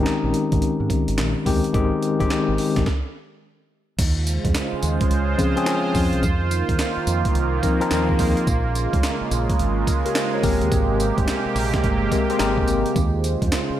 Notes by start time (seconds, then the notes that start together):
Already playing: D#3 G#3 C4 C#4 G4
0.03 D#4, muted fingered electric bass stroke, snare, clap, closed hi-hat
0.24 A#1
0.34 closed hi-hat
0.52 G#1, kick, closed hi-hat
0.62 closed hi-hat
0.80 G#2
0.90 kick, closed hi-hat
1.08 G#1, closed hi-hat
1.18 A#1, snare, clap, closed hi-hat
1.45 D#2 D#3 G#3 C4 G4, kick, open hi-hat
1.64 closed hi-hat
1.74 G#1 D#3 G#3 C4 G4, kick, closed hi-hat
2.03 closed hi-hat
2.19 G1 D#3 G#3 C4 G4, kick, closed hi-hat
2.30 muted fingered electric bass stroke, snare, clap, closed hi-hat
2.48 G#1
2.58 open hi-hat
2.76 G#1, kick, snare, closed hi-hat
2.86 kick, snare
3.98 D#2 C#3 G#3 F4 C5, kick, closed hi-hat, crash, tambourine
4.27 closed hi-hat, tambourine
4.45 F2, kick, closed hi-hat
4.54 snare, clap, closed hi-hat, tambourine
4.73 muted fingered electric bass stroke
4.83 D#2, closed hi-hat, tambourine
5.01 kick, closed hi-hat
5.11 C#2, closed hi-hat
5.38 F3 C4 C#4 G#4, kick, closed hi-hat, tambourine
5.56 F3 C4 C#4 G#4, closed hi-hat
5.66 F3 C4 C#4 G#4, snare, clap, closed hi-hat, tambourine
5.95 F2, kick, open hi-hat, tambourine
6.13 C2, closed hi-hat
6.23 F2 D#3 A#3, kick, closed hi-hat, tambourine
6.51 closed hi-hat, tambourine
6.69 D#2, kick, closed hi-hat
6.79 snare, clap, closed hi-hat, tambourine
6.97 muted fingered electric bass stroke
7.07 F2, closed hi-hat, tambourine
7.25 kick, closed hi-hat
7.35 C2, closed hi-hat
7.63 F3 C4 D#4 A#4, kick, closed hi-hat, tambourine
7.80 F3 C4 D#4 A#4, closed hi-hat
7.91 D#2, snare, clap, closed hi-hat, tambourine
8.09 G#4 C5, kick
8.19 D#2 C5 D#5, kick, open hi-hat, tambourine
8.37 F5, closed hi-hat
8.47 A#1 C#3 G#3, kick, closed hi-hat, tambourine
8.75 closed hi-hat, tambourine
8.93 C#2, kick, closed hi-hat
9.03 snare, clap, closed hi-hat, tambourine
9.21 muted fingered electric bass stroke
9.31 A#1, closed hi-hat, tambourine
9.50 kick, closed hi-hat
9.59 G#1, closed hi-hat
9.87 kick, closed hi-hat, tambourine
10.05 G4 A#4, closed hi-hat
10.15 C5 D#5, snare, clap, closed hi-hat, tambourine
10.34 A#4 C#5
10.43 G#1 C3 G#3 A#3 C4 G4 A#4, kick, open hi-hat, tambourine
10.61 D#2, closed hi-hat
10.72 G#1, kick, closed hi-hat, tambourine
11.00 closed hi-hat, tambourine
11.18 G1, kick, closed hi-hat
11.27 snare, clap, closed hi-hat, tambourine
11.46 muted fingered electric bass stroke
11.56 A#1, open hi-hat, tambourine
11.74 kick, snare, closed hi-hat
11.84 G1, kick, closed hi-hat
12.11 G#3 C4 G4 A#4, kick, closed hi-hat, tambourine
12.29 G#3 C4 G4 C5, closed hi-hat
12.39 G#1 G#3 A#3 G4 A#4, snare, clap, closed hi-hat, tambourine
12.46 C4
12.58 kick
12.67 G#1, closed hi-hat, tambourine
12.86 closed hi-hat
12.96 D#2 C#3 F4 C5, kick, closed hi-hat, tambourine
13.24 closed hi-hat, tambourine
13.42 F2, kick, closed hi-hat
13.52 snare, clap, closed hi-hat, tambourine
13.70 muted fingered electric bass stroke